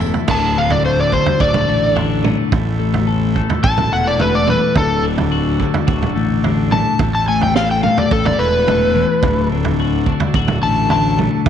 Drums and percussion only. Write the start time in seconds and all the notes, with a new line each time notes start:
0.00 mid tom, tambourine
0.14 floor tom, tambourine
0.28 kick, floor tom, crash
0.70 floor tom
1.12 kick
1.26 floor tom
1.40 kick
1.54 floor tom, mid tom
1.96 floor tom
2.24 mid tom
2.52 kick, floor tom
2.94 floor tom
3.36 kick
3.50 floor tom
3.64 kick
3.77 floor tom, mid tom
4.20 floor tom
4.47 mid tom
4.75 kick, floor tom
5.18 floor tom
5.60 kick
5.74 floor tom
5.88 kick
6.02 floor tom, mid tom
6.44 floor tom
6.72 mid tom
6.99 kick, floor tom
7.41 floor tom
7.55 snare
7.83 mid tom
7.97 floor tom
8.11 kick
8.26 floor tom, mid tom
8.68 floor tom, mid tom
9.23 kick, floor tom
9.65 floor tom
10.06 kick
10.20 floor tom
10.34 kick
10.48 floor tom, mid tom
10.90 floor tom
11.19 mid tom
11.46 kick, floor tom